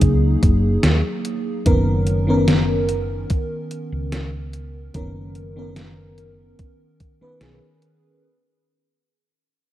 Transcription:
Already playing: fm electric piano F#3 A#3 D#4 G#4
0.01 fretless electric bass C#2, kick, closed hi-hat
0.43 fretless electric bass F#1, kick, closed hi-hat
0.83 fretless electric bass D#2, snare, closed hi-hat
1.25 closed hi-hat
1.66 fretless electric bass F#1, fm electric piano D#3 B3 C#4 A#4, kick, closed hi-hat
2.07 closed hi-hat
2.27 fm electric piano D#3 B3 C#4 A#4
2.48 snare, closed hi-hat
2.89 closed hi-hat
3.30 kick, closed hi-hat
3.71 closed hi-hat
3.92 fretless electric bass C#2
4.12 snare, closed hi-hat
4.53 closed hi-hat
4.94 fretless electric bass F#1, fm electric piano D#3 B3 C#4 A#4, kick, closed hi-hat
5.35 closed hi-hat
5.56 fm electric piano D#3 B3 C#4 A#4
5.76 snare, closed hi-hat
6.18 closed hi-hat
6.59 kick, closed hi-hat
7.00 kick, closed hi-hat
7.21 fm electric piano D#3 B3 C#4 B4, muted fretless electric bass stroke
7.41 fretless electric bass B1, fm electric piano D#3 B3 C#4 G#4, snare, closed hi-hat
7.82 closed hi-hat

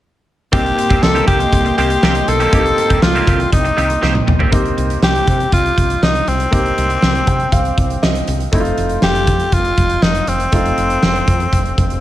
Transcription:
0.52 fretless electric bass C2, clean electric guitar D#3 A#3 C4 G4, grand piano A#3 C4 D#4 G4, analog synth pad A#3 D#5 G5 C6, tenor saxophone G4, kick, closed hi-hat
0.65 muted clean electric guitar stroke, closed hi-hat
0.77 muted clean electric guitar stroke, closed hi-hat
0.89 fretless electric bass C2, clean electric guitar D#3 A#3 C4 G4, kick, closed hi-hat
1.02 fretless electric bass C2, tenor saxophone A4, muted clean electric guitar stroke, snare
1.15 clean electric guitar D#3 A#3 C4 G4, closed hi-hat
1.27 fretless electric bass C2, clean electric guitar D#3 A#3 C4 G4, tenor saxophone G4, kick, closed hi-hat
1.40 muted clean electric guitar stroke, closed hi-hat
1.53 fretless electric bass C2, muted clean electric guitar stroke, kick, closed hi-hat
1.65 muted clean electric guitar stroke, closed hi-hat
1.78 fretless electric bass C2, clean electric guitar D#3 A#3 C4 G4, tenor saxophone G4, closed hi-hat
1.90 muted clean electric guitar stroke, closed hi-hat
2.03 fretless electric bass C2, clean electric guitar D#3 A#3 C4 G4, snare
2.15 muted clean electric guitar stroke, closed hi-hat
2.28 fretless electric bass B1, tenor saxophone A4, muted clean electric guitar stroke, closed hi-hat
2.40 clean electric guitar D#3 A#3 C4 G4, closed hi-hat
2.52 fretless electric bass C2, clean electric guitar D#3 A#3 C4 G4, grand piano A#3 C4 D#4 G4, kick, closed hi-hat
2.65 muted clean electric guitar stroke, closed hi-hat
2.78 muted clean electric guitar stroke, closed hi-hat
2.90 fretless electric bass C2, clean electric guitar D#3 A#3 C4 G4, kick, closed hi-hat
3.02 fretless electric bass C2, tenor saxophone F4, muted clean electric guitar stroke, snare
3.15 clean electric guitar D#3 A#3 C4 G4, closed hi-hat
3.27 fretless electric bass C2, clean electric guitar D#3 A#3 C4 G4, kick, closed hi-hat
3.40 muted clean electric guitar stroke, closed hi-hat
3.52 fretless electric bass C2, tenor saxophone D#4, muted clean electric guitar stroke, kick, closed hi-hat
3.65 muted clean electric guitar stroke, closed hi-hat
3.77 fretless electric bass C2, clean electric guitar D#3 A#3 C4 G4, closed hi-hat
3.89 muted clean electric guitar stroke, closed hi-hat
4.02 fretless electric bass C2, clean electric guitar D#3 A#3 C4 G4, snare
4.14 muted clean electric guitar stroke, high tom
4.27 fretless electric bass B1, muted clean electric guitar stroke, mid tom
4.39 clean electric guitar D#3 A#3 C4 G4, floor tom
4.51 fretless electric bass C2, grand piano A#3 C4 D#4 G4, kick, closed hi-hat
4.65 closed hi-hat
4.78 fretless electric bass C2, closed hi-hat
4.90 closed hi-hat
5.02 fretless electric bass C2, tenor saxophone G4, snare
5.16 closed hi-hat
5.27 fretless electric bass C3, kick, closed hi-hat
5.40 closed hi-hat
5.52 fretless electric bass C2, tenor saxophone F4, kick, closed hi-hat
5.66 closed hi-hat
5.77 fretless electric bass C2, kick, closed hi-hat
5.90 closed hi-hat
6.02 fretless electric bass C2, tenor saxophone D#4, snare
6.15 closed hi-hat
6.27 fretless electric bass C2, tenor saxophone C4, closed hi-hat
6.40 closed hi-hat
6.51 fretless electric bass C2, grand piano A#3 C4 D#4 G4, kick, closed hi-hat
6.66 closed hi-hat
6.78 fretless electric bass C2, closed hi-hat
6.90 closed hi-hat
7.02 fretless electric bass C2, snare
7.15 closed hi-hat
7.27 fretless electric bass C3, grand piano G5, kick, closed hi-hat
7.40 closed hi-hat
7.52 fretless electric bass C2, grand piano F5, kick, closed hi-hat
7.65 closed hi-hat
7.78 fretless electric bass C2, kick, closed hi-hat
7.90 closed hi-hat
8.02 fretless electric bass C2, grand piano D#5, snare
8.15 closed hi-hat
8.27 fretless electric bass C2, closed hi-hat
8.40 closed hi-hat
8.52 fretless electric bass F1, grand piano A3 C4 D#4 E4, kick, closed hi-hat
8.60 grand piano F4
8.65 closed hi-hat
8.77 fretless electric bass F1, closed hi-hat
8.89 closed hi-hat
9.02 fretless electric bass F1, tenor saxophone G4, snare
9.15 closed hi-hat
9.27 fretless electric bass F2, kick, closed hi-hat
9.40 closed hi-hat
9.52 fretless electric bass F1, tenor saxophone F4, kick, closed hi-hat
9.65 closed hi-hat
9.77 fretless electric bass F1, kick, closed hi-hat
9.90 closed hi-hat
10.02 fretless electric bass F1, tenor saxophone D#4, snare
10.15 closed hi-hat
10.27 fretless electric bass F1, tenor saxophone C4, closed hi-hat
10.40 closed hi-hat
10.52 fretless electric bass F1, grand piano A3 C4 D#4 F4, kick, closed hi-hat
10.65 closed hi-hat
10.78 fretless electric bass F1, closed hi-hat
10.90 closed hi-hat
11.03 fretless electric bass F1, snare
11.16 closed hi-hat
11.28 fretless electric bass F2, kick, closed hi-hat
11.40 closed hi-hat
11.53 fretless electric bass F1, kick, closed hi-hat
11.66 closed hi-hat
11.78 fretless electric bass F1, kick, closed hi-hat
11.90 closed hi-hat

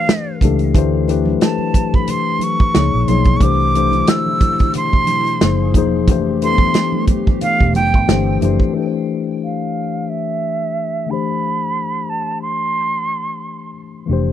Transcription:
Already playing: tine electric piano E3 A3 D4 G4 B4 C5, flute F5
0.08 snare, closed hi-hat, muted conga
0.41 fingered electric bass C#2, tine electric piano E3 A3 D4 G4, kick, closed hi-hat, high conga, low conga
0.45 tine electric piano A4
0.59 closed hi-hat
0.74 fingered electric bass D2, tine electric piano E3 A3 D4 G4 C5, kick, closed hi-hat, muted conga
1.08 tine electric piano E3 A3 D4 G4 B4, closed hi-hat, muted conga
1.25 high conga
1.41 flute A5, snare, closed hi-hat
1.58 high conga
1.74 kick, closed hi-hat, muted conga, high conga
1.94 flute B5, kick, high conga
2.08 flute C6, closed hi-hat, low conga
2.39 closed hi-hat, muted conga, high conga
2.44 flute C#6
2.60 kick
2.74 fingered electric bass C#2, tine electric piano F3 A#3 D#4 G#4 C#5, snare, closed hi-hat, muted conga
2.94 fingered electric bass A#1
3.08 fingered electric bass B1, tine electric piano F3 A#3 D#4 G#4 C#5, flute C6, closed hi-hat, muted conga, high conga, low conga
3.24 kick, closed hi-hat
3.37 analog synth pad B2 D3, flute C#6, kick
3.41 fingered electric bass C2, tine electric piano E3 A3 D4 G4 C5, analog synth pad E4, flute D6, closed hi-hat, muted conga
3.75 tine electric piano E3 A3 D4 G4 C5, closed hi-hat, muted conga
3.92 closed hi-hat, high conga
4.07 flute E6, snare, closed hi-hat, muted conga
4.26 high conga
4.41 kick, closed hi-hat, muted conga, high conga
4.59 kick, closed hi-hat, high conga
4.74 flute C6, closed hi-hat, muted conga, low conga
4.93 kick
5.07 closed hi-hat, muted conga, high conga
5.27 closed hi-hat
5.41 fingered electric bass F#1, tine electric piano F3 A#3 D#4 G#4 C5, analog synth pad F3 A#3 G#4, snare, closed hi-hat
5.74 fingered electric bass E1, tine electric piano F3 A#3 D#4 G#4, kick, closed hi-hat, muted conga, high conga, low conga
5.78 tine electric piano C5
6.08 fingered electric bass F1, tine electric piano E3 A3 D4 G4 C5, analog synth pad E3 A3 G4, kick, closed hi-hat
6.42 tine electric piano E3 A3 D4 G4 A4, flute C6, closed hi-hat, muted conga
6.52 tine electric piano B3
6.58 kick, high conga
6.74 snare, closed hi-hat, muted conga
6.92 high conga
7.07 kick, closed hi-hat, muted conga, high conga
7.27 kick, high conga
7.41 flute F5, closed hi-hat, muted conga, low conga
7.60 fingered electric bass E1, kick
7.74 fingered electric bass F1, flute G5, closed hi-hat, muted conga, high conga
7.94 fingered electric bass G1, kick
8.07 fingered electric bass G1, tine electric piano E3 A3 D4 G4 C5, analog synth pad F3 C4, snare, closed hi-hat, muted conga
8.41 fingered electric bass F#1, tine electric piano E3 A3 D4 G4 C5, closed hi-hat, muted conga, high conga, low conga
8.60 kick
8.73 tine electric piano E3 A3 D4
8.78 tine electric piano G4 B4
8.86 tine electric piano C5
9.44 flute F5
10.09 flute E5
11.06 tine electric piano D3 A3 D4
11.11 tine electric piano E3 G4 C5, flute B5
12.10 flute A5
12.42 flute C6
14.06 fingered electric bass F1, tine electric piano E3 A3 D4
14.11 tine electric piano G4 C5

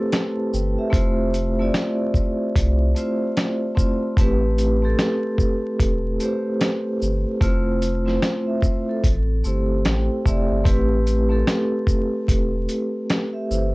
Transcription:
Already playing: vibraphone A3 C4 E4 G4 A4 B4 C5
0.12 vibraphone C5 A5, snare, closed hi-hat
0.54 sub bass G1, vibraphone B4 G5, shaker
0.78 vibraphone G4 E5
0.90 sub bass F1, vibraphone A3 C4 E4 F4 C5, kick, closed hi-hat
1.34 closed hi-hat, shaker
1.59 vibraphone A3 C4 E4 F4 D5
1.74 snare, closed hi-hat
2.14 kick, shaker
2.56 sub bass C2, kick, closed hi-hat
2.95 vibraphone A3 C4 E4 F4 C5, closed hi-hat, shaker
3.37 snare, closed hi-hat
3.75 vibraphone A3 C4 E4 F4 C5, kick, shaker
4.17 sub bass A1, vibraphone A3 C4 E4 G4 B4, kick, closed hi-hat
4.58 closed hi-hat, shaker
4.82 vibraphone A3 C4 E4 G4 A4
4.99 snare, closed hi-hat
5.38 kick, shaker
5.80 sub bass E1, kick, closed hi-hat
6.20 vibraphone A3 C4 E4 G4 C5, closed hi-hat, shaker
6.61 snare, closed hi-hat
7.02 sub bass G1, shaker
7.41 sub bass F1, vibraphone A3 C4 E4 F4 C5, kick, closed hi-hat
7.82 closed hi-hat, shaker
8.05 vibraphone A3 C4 E4 F4 C5, snare
8.22 snare, closed hi-hat
8.47 vibraphone E5
8.62 vibraphone E4 C5, kick, shaker
8.89 vibraphone C4 A4
9.04 sub bass A1, kick, closed hi-hat
9.44 sub bass G1, vibraphone A3 C4 E4 G4 C5, shaker
9.85 sub bass A1, vibraphone G5, snare, closed hi-hat
10.26 sub bass F1, vibraphone A3 C4 E4 G4 D5 E5, kick, shaker
10.51 sub bass G1
10.64 sub bass A1, vibraphone A3 C4 E4 G4 B4, kick, closed hi-hat
11.07 closed hi-hat, shaker
11.29 vibraphone A3 C4 E4 G4 A4
11.47 snare, closed hi-hat
11.87 kick, shaker
12.28 sub bass E1, kick, closed hi-hat
12.69 closed hi-hat, shaker
13.10 snare, closed hi-hat
13.33 vibraphone G4 E5
13.51 sub bass G1, vibraphone E4 C5, shaker

